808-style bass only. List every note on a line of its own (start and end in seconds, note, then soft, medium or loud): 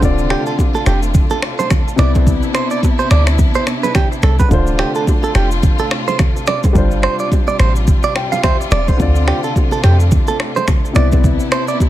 0.03 0.35 D1 loud
0.86 1.19 F1 medium
1.99 2.40 C2 loud
3.11 3.43 D2 medium
4.23 4.44 C2 medium
4.51 4.84 D1 loud
5.35 5.68 F1 medium
6.75 7.08 G1 loud
7.60 7.92 A1 medium
8.72 8.92 E1 loud
9.00 9.32 D2 loud
9.84 10.16 F2 medium
10.96 11.37 C2 loud